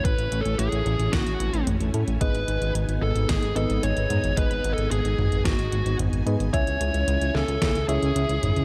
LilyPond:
<<
  \new Staff \with { instrumentName = "Lead electric guitar" } { \time 4/4 \key gis \phrygian \tempo 4 = 111 \tuplet 3/2 { b'4 a'8 } gis'4 fis'4 r4 | b'4 r8 a'8 gis'8 a'8 cis''4 | \tuplet 3/2 { b'4 a'8 } gis'4 fis'4 r4 | cis''4. a'4 gis'4. | }
  \new Staff \with { instrumentName = "FM electric piano" } { \time 4/4 \key gis \phrygian r1 | <b dis' gis' b' dis''>2~ <b dis' gis' b' dis''>8 <b dis' gis' b' dis''>4. | <b dis' gis' b' dis''>2.~ <b dis' gis' b' dis''>8 <b dis' gis' b' dis''>8 | <cis' e' cis'' e'' gis''>2~ <cis' e' cis'' e'' gis''>8 <cis' e' gis' cis'' e''>4. | }
  \new Staff \with { instrumentName = "String machine" } { \time 4/4 \key gis \phrygian <a cis' e' cis'' gis''>1 | <b dis'>1~ | <b dis'>1 | <cis' e'>1 | }
  \new Staff \with { instrumentName = "Analog synth bass" } { \clef bass \time 4/4 \key gis \phrygian a,,16 a,,16 a,,16 a,,16 a,,16 a,,16 a,,16 a,,16 a,,16 a,,16 a,,16 a,,16 a,,16 a,,16 a,16 a,,16 | gis,,16 gis,,16 gis,,16 gis,,16 gis,,16 gis,,16 gis,,16 gis,,16 gis,,16 gis,,16 gis,,16 gis,,16 gis,,16 gis,,16 gis,16 gis,,16 | gis,,16 gis,,16 gis,,16 gis,,16 gis,,16 gis,,16 gis,,16 gis,,16 gis,,16 gis,,16 gis,,16 gis,,16 gis,,16 gis,,16 gis,16 gis,,16 | cis,16 cis,16 cis,16 cis,16 cis,16 cis,16 cis,16 cis,16 cis,16 cis,16 cis,16 cis,16 cis,16 cis,16 gis,,16 cis,16 | }
  \new DrumStaff \with { instrumentName = "Drums" } \drummode { \time 4/4 <hh bd>16 hh16 hh16 hh16 hh16 hh16 hh16 hh16 <hh bd sn>16 hh16 hh16 hh16 <hh toml>16 hh16 hh16 hh16 | <hh bd>16 hh16 hh16 hh16 hh16 hh8 hh16 <hh bd sn>16 hh16 hh16 hh16 hh16 hh16 <hh toml>16 hh16 | <hh bd>16 hh16 hh16 hh16 hh16 hh16 toml16 hh16 <hh bd sn>16 hh16 hh16 hh16 <hh toml>16 hh16 hh16 hh16 | <hh bd>16 hh16 hh16 hh16 hh16 hh16 sn16 hh16 <hh bd sn>16 hh16 hh16 hh16 hh16 hh16 <hh toml>16 hh16 | }
>>